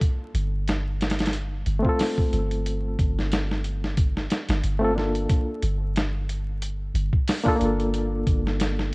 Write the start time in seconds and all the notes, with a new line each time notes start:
0.01 kick, closed hi-hat
0.34 G1, closed hi-hat
0.68 snare, closed hi-hat
1.01 snare, closed hi-hat
1.10 snare, closed hi-hat
1.19 snare, closed hi-hat
1.26 snare, closed hi-hat
1.33 closed hi-hat
1.66 G1, closed hi-hat
1.79 A3 C4
1.85 F4, kick
1.89 A4
1.99 snare, open hi-hat
2.18 kick
2.33 G1, closed hi-hat
2.51 closed hi-hat
2.66 closed hi-hat
2.99 G1, kick, closed hi-hat
3.19 snare
3.32 snare, closed hi-hat
3.51 snare
3.64 closed hi-hat
3.84 snare
3.97 kick, closed hi-hat
4.17 snare
4.30 snare, closed hi-hat
4.49 G1, snare, closed hi-hat
4.64 G1, closed hi-hat
4.79 A3 C4 F4
4.85 A4
4.96 D4 F4 A4, snare
5.15 closed hi-hat
5.30 kick, closed hi-hat
5.63 G1, closed hi-hat
5.96 snare, closed hi-hat
6.29 closed hi-hat
6.62 closed hi-hat
6.94 G1, closed hi-hat
7.13 kick
7.28 snare, open hi-hat
7.44 A#3 D4 F4, kick
7.48 A4
7.56 A#3 D4
7.61 G1 F4, closed hi-hat
7.65 A4
7.80 closed hi-hat
7.94 closed hi-hat
8.27 G1, kick, closed hi-hat
8.47 snare
8.60 snare, closed hi-hat
8.79 snare